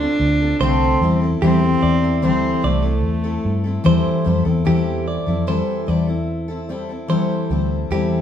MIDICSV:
0, 0, Header, 1, 5, 480
1, 0, Start_track
1, 0, Key_signature, 0, "minor"
1, 0, Tempo, 810811
1, 842, Time_signature, 4, 2, 24, 8
1, 4863, End_track
2, 0, Start_track
2, 0, Title_t, "Clean electric guitar"
2, 0, Program_c, 0, 27
2, 359, Note_on_c, 0, 72, 89
2, 699, Note_off_c, 0, 72, 0
2, 841, Note_on_c, 0, 67, 111
2, 1070, Note_off_c, 0, 67, 0
2, 1081, Note_on_c, 0, 74, 89
2, 1324, Note_off_c, 0, 74, 0
2, 1324, Note_on_c, 0, 72, 94
2, 1551, Note_off_c, 0, 72, 0
2, 1564, Note_on_c, 0, 74, 78
2, 1677, Note_off_c, 0, 74, 0
2, 2285, Note_on_c, 0, 72, 87
2, 2623, Note_off_c, 0, 72, 0
2, 2763, Note_on_c, 0, 67, 105
2, 2991, Note_off_c, 0, 67, 0
2, 3005, Note_on_c, 0, 74, 76
2, 3232, Note_off_c, 0, 74, 0
2, 3244, Note_on_c, 0, 72, 87
2, 3481, Note_off_c, 0, 72, 0
2, 3481, Note_on_c, 0, 74, 66
2, 3597, Note_off_c, 0, 74, 0
2, 4202, Note_on_c, 0, 72, 80
2, 4542, Note_off_c, 0, 72, 0
2, 4687, Note_on_c, 0, 67, 98
2, 4863, Note_off_c, 0, 67, 0
2, 4863, End_track
3, 0, Start_track
3, 0, Title_t, "Steel-string acoustic guitar"
3, 0, Program_c, 1, 25
3, 2, Note_on_c, 1, 69, 62
3, 13, Note_on_c, 1, 65, 53
3, 19, Note_on_c, 1, 60, 50
3, 236, Note_off_c, 1, 69, 0
3, 243, Note_off_c, 1, 65, 0
3, 243, Note_on_c, 1, 69, 51
3, 251, Note_off_c, 1, 60, 0
3, 251, Note_on_c, 1, 65, 45
3, 259, Note_on_c, 1, 60, 42
3, 360, Note_off_c, 1, 60, 0
3, 361, Note_on_c, 1, 50, 87
3, 363, Note_off_c, 1, 65, 0
3, 363, Note_off_c, 1, 69, 0
3, 365, Note_on_c, 1, 57, 84
3, 367, Note_on_c, 1, 60, 91
3, 370, Note_on_c, 1, 65, 89
3, 373, Note_on_c, 1, 69, 105
3, 601, Note_off_c, 1, 57, 0
3, 602, Note_off_c, 1, 50, 0
3, 603, Note_off_c, 1, 60, 0
3, 603, Note_on_c, 1, 55, 61
3, 606, Note_off_c, 1, 65, 0
3, 608, Note_off_c, 1, 69, 0
3, 610, Note_on_c, 1, 60, 59
3, 612, Note_on_c, 1, 64, 72
3, 618, Note_on_c, 1, 69, 76
3, 712, Note_off_c, 1, 69, 0
3, 719, Note_on_c, 1, 69, 58
3, 722, Note_off_c, 1, 64, 0
3, 723, Note_off_c, 1, 55, 0
3, 726, Note_off_c, 1, 60, 0
3, 729, Note_on_c, 1, 64, 54
3, 734, Note_on_c, 1, 60, 48
3, 840, Note_on_c, 1, 52, 80
3, 841, Note_off_c, 1, 60, 0
3, 841, Note_off_c, 1, 69, 0
3, 843, Note_off_c, 1, 64, 0
3, 846, Note_on_c, 1, 55, 79
3, 848, Note_on_c, 1, 60, 79
3, 850, Note_on_c, 1, 64, 90
3, 855, Note_on_c, 1, 69, 96
3, 950, Note_off_c, 1, 69, 0
3, 958, Note_on_c, 1, 69, 60
3, 960, Note_off_c, 1, 64, 0
3, 961, Note_off_c, 1, 52, 0
3, 964, Note_off_c, 1, 55, 0
3, 965, Note_off_c, 1, 60, 0
3, 967, Note_on_c, 1, 64, 54
3, 976, Note_on_c, 1, 60, 43
3, 1191, Note_off_c, 1, 69, 0
3, 1198, Note_on_c, 1, 69, 53
3, 1200, Note_off_c, 1, 64, 0
3, 1206, Note_off_c, 1, 60, 0
3, 1207, Note_on_c, 1, 64, 51
3, 1213, Note_on_c, 1, 60, 42
3, 1314, Note_off_c, 1, 60, 0
3, 1314, Note_on_c, 1, 52, 81
3, 1316, Note_off_c, 1, 64, 0
3, 1318, Note_on_c, 1, 55, 84
3, 1320, Note_off_c, 1, 69, 0
3, 1321, Note_on_c, 1, 60, 90
3, 1323, Note_on_c, 1, 64, 91
3, 1328, Note_on_c, 1, 69, 93
3, 1546, Note_off_c, 1, 55, 0
3, 1551, Note_off_c, 1, 60, 0
3, 1553, Note_on_c, 1, 55, 67
3, 1555, Note_off_c, 1, 64, 0
3, 1558, Note_off_c, 1, 52, 0
3, 1558, Note_on_c, 1, 60, 59
3, 1560, Note_off_c, 1, 69, 0
3, 1562, Note_on_c, 1, 64, 76
3, 1568, Note_on_c, 1, 69, 67
3, 1665, Note_off_c, 1, 69, 0
3, 1672, Note_on_c, 1, 69, 57
3, 1673, Note_off_c, 1, 64, 0
3, 1678, Note_off_c, 1, 55, 0
3, 1680, Note_off_c, 1, 60, 0
3, 1680, Note_on_c, 1, 64, 50
3, 1690, Note_on_c, 1, 60, 45
3, 1909, Note_off_c, 1, 69, 0
3, 1916, Note_on_c, 1, 69, 61
3, 1918, Note_off_c, 1, 64, 0
3, 1924, Note_off_c, 1, 60, 0
3, 1925, Note_on_c, 1, 64, 52
3, 1931, Note_on_c, 1, 60, 44
3, 2147, Note_off_c, 1, 69, 0
3, 2154, Note_on_c, 1, 69, 58
3, 2156, Note_off_c, 1, 64, 0
3, 2163, Note_on_c, 1, 64, 52
3, 2164, Note_off_c, 1, 60, 0
3, 2172, Note_on_c, 1, 60, 49
3, 2272, Note_off_c, 1, 60, 0
3, 2272, Note_on_c, 1, 52, 92
3, 2273, Note_off_c, 1, 64, 0
3, 2276, Note_on_c, 1, 55, 97
3, 2277, Note_off_c, 1, 69, 0
3, 2279, Note_on_c, 1, 60, 92
3, 2280, Note_on_c, 1, 64, 100
3, 2284, Note_on_c, 1, 69, 98
3, 2505, Note_off_c, 1, 55, 0
3, 2512, Note_on_c, 1, 55, 64
3, 2513, Note_off_c, 1, 60, 0
3, 2517, Note_off_c, 1, 52, 0
3, 2520, Note_off_c, 1, 64, 0
3, 2520, Note_on_c, 1, 60, 75
3, 2523, Note_off_c, 1, 69, 0
3, 2527, Note_on_c, 1, 64, 77
3, 2529, Note_on_c, 1, 69, 77
3, 2627, Note_off_c, 1, 69, 0
3, 2634, Note_on_c, 1, 69, 66
3, 2635, Note_off_c, 1, 64, 0
3, 2638, Note_off_c, 1, 55, 0
3, 2641, Note_off_c, 1, 60, 0
3, 2642, Note_on_c, 1, 64, 49
3, 2650, Note_on_c, 1, 60, 52
3, 2751, Note_on_c, 1, 52, 82
3, 2753, Note_off_c, 1, 60, 0
3, 2754, Note_off_c, 1, 64, 0
3, 2755, Note_on_c, 1, 55, 86
3, 2756, Note_off_c, 1, 69, 0
3, 2760, Note_on_c, 1, 60, 85
3, 2761, Note_on_c, 1, 64, 94
3, 2763, Note_on_c, 1, 69, 93
3, 3109, Note_off_c, 1, 69, 0
3, 3116, Note_on_c, 1, 69, 58
3, 3117, Note_off_c, 1, 52, 0
3, 3118, Note_off_c, 1, 64, 0
3, 3119, Note_off_c, 1, 55, 0
3, 3122, Note_off_c, 1, 60, 0
3, 3125, Note_on_c, 1, 64, 56
3, 3134, Note_on_c, 1, 60, 49
3, 3237, Note_off_c, 1, 60, 0
3, 3238, Note_off_c, 1, 64, 0
3, 3238, Note_on_c, 1, 52, 86
3, 3240, Note_off_c, 1, 69, 0
3, 3240, Note_on_c, 1, 55, 92
3, 3244, Note_on_c, 1, 60, 87
3, 3245, Note_on_c, 1, 64, 92
3, 3248, Note_on_c, 1, 69, 90
3, 3465, Note_off_c, 1, 55, 0
3, 3472, Note_on_c, 1, 55, 58
3, 3474, Note_off_c, 1, 60, 0
3, 3480, Note_off_c, 1, 64, 0
3, 3481, Note_off_c, 1, 52, 0
3, 3481, Note_on_c, 1, 60, 68
3, 3483, Note_off_c, 1, 69, 0
3, 3487, Note_on_c, 1, 64, 71
3, 3490, Note_on_c, 1, 69, 77
3, 3587, Note_off_c, 1, 69, 0
3, 3594, Note_on_c, 1, 69, 55
3, 3596, Note_off_c, 1, 64, 0
3, 3598, Note_off_c, 1, 55, 0
3, 3602, Note_off_c, 1, 60, 0
3, 3603, Note_on_c, 1, 64, 56
3, 3610, Note_on_c, 1, 60, 46
3, 3829, Note_off_c, 1, 69, 0
3, 3837, Note_on_c, 1, 69, 65
3, 3840, Note_off_c, 1, 64, 0
3, 3847, Note_off_c, 1, 60, 0
3, 3847, Note_on_c, 1, 64, 53
3, 3854, Note_on_c, 1, 60, 47
3, 3959, Note_off_c, 1, 60, 0
3, 3960, Note_off_c, 1, 69, 0
3, 3960, Note_on_c, 1, 55, 67
3, 3965, Note_off_c, 1, 64, 0
3, 3966, Note_on_c, 1, 60, 73
3, 3972, Note_on_c, 1, 64, 72
3, 3977, Note_on_c, 1, 69, 70
3, 4072, Note_off_c, 1, 69, 0
3, 4079, Note_on_c, 1, 69, 58
3, 4081, Note_off_c, 1, 64, 0
3, 4082, Note_off_c, 1, 55, 0
3, 4085, Note_off_c, 1, 60, 0
3, 4088, Note_on_c, 1, 64, 51
3, 4097, Note_on_c, 1, 60, 50
3, 4193, Note_off_c, 1, 60, 0
3, 4193, Note_on_c, 1, 52, 91
3, 4197, Note_off_c, 1, 64, 0
3, 4198, Note_off_c, 1, 69, 0
3, 4198, Note_on_c, 1, 55, 86
3, 4200, Note_on_c, 1, 60, 86
3, 4205, Note_on_c, 1, 64, 97
3, 4205, Note_on_c, 1, 69, 101
3, 4432, Note_off_c, 1, 55, 0
3, 4438, Note_off_c, 1, 60, 0
3, 4439, Note_off_c, 1, 52, 0
3, 4439, Note_on_c, 1, 55, 59
3, 4445, Note_off_c, 1, 64, 0
3, 4445, Note_off_c, 1, 69, 0
3, 4445, Note_on_c, 1, 60, 69
3, 4451, Note_on_c, 1, 64, 70
3, 4454, Note_on_c, 1, 69, 70
3, 4676, Note_off_c, 1, 55, 0
3, 4681, Note_off_c, 1, 60, 0
3, 4681, Note_on_c, 1, 52, 76
3, 4683, Note_off_c, 1, 64, 0
3, 4683, Note_on_c, 1, 55, 93
3, 4685, Note_off_c, 1, 69, 0
3, 4688, Note_on_c, 1, 60, 96
3, 4690, Note_on_c, 1, 64, 92
3, 4692, Note_on_c, 1, 69, 94
3, 4863, Note_off_c, 1, 52, 0
3, 4863, Note_off_c, 1, 55, 0
3, 4863, Note_off_c, 1, 60, 0
3, 4863, Note_off_c, 1, 64, 0
3, 4863, Note_off_c, 1, 69, 0
3, 4863, End_track
4, 0, Start_track
4, 0, Title_t, "Cello"
4, 0, Program_c, 2, 42
4, 0, Note_on_c, 2, 62, 101
4, 366, Note_off_c, 2, 62, 0
4, 369, Note_on_c, 2, 60, 105
4, 702, Note_off_c, 2, 60, 0
4, 853, Note_on_c, 2, 60, 107
4, 1304, Note_off_c, 2, 60, 0
4, 1332, Note_on_c, 2, 60, 93
4, 1579, Note_on_c, 2, 57, 84
4, 1588, Note_off_c, 2, 60, 0
4, 2291, Note_off_c, 2, 57, 0
4, 4863, End_track
5, 0, Start_track
5, 0, Title_t, "Fingered electric bass"
5, 0, Program_c, 3, 33
5, 116, Note_on_c, 3, 38, 90
5, 316, Note_off_c, 3, 38, 0
5, 356, Note_on_c, 3, 36, 99
5, 556, Note_off_c, 3, 36, 0
5, 599, Note_on_c, 3, 40, 106
5, 797, Note_off_c, 3, 40, 0
5, 841, Note_on_c, 3, 40, 110
5, 1038, Note_off_c, 3, 40, 0
5, 1081, Note_on_c, 3, 40, 96
5, 1321, Note_off_c, 3, 40, 0
5, 1321, Note_on_c, 3, 38, 92
5, 1519, Note_off_c, 3, 38, 0
5, 1560, Note_on_c, 3, 36, 92
5, 1802, Note_off_c, 3, 36, 0
5, 1802, Note_on_c, 3, 40, 85
5, 1999, Note_off_c, 3, 40, 0
5, 2042, Note_on_c, 3, 43, 88
5, 2239, Note_off_c, 3, 43, 0
5, 2284, Note_on_c, 3, 40, 90
5, 2382, Note_off_c, 3, 40, 0
5, 2523, Note_on_c, 3, 41, 95
5, 2621, Note_off_c, 3, 41, 0
5, 2640, Note_on_c, 3, 40, 94
5, 2740, Note_off_c, 3, 40, 0
5, 2767, Note_on_c, 3, 40, 95
5, 3061, Note_off_c, 3, 40, 0
5, 3121, Note_on_c, 3, 41, 84
5, 3319, Note_off_c, 3, 41, 0
5, 3481, Note_on_c, 3, 40, 90
5, 4420, Note_off_c, 3, 40, 0
5, 4442, Note_on_c, 3, 38, 93
5, 4640, Note_off_c, 3, 38, 0
5, 4680, Note_on_c, 3, 40, 101
5, 4863, Note_off_c, 3, 40, 0
5, 4863, End_track
0, 0, End_of_file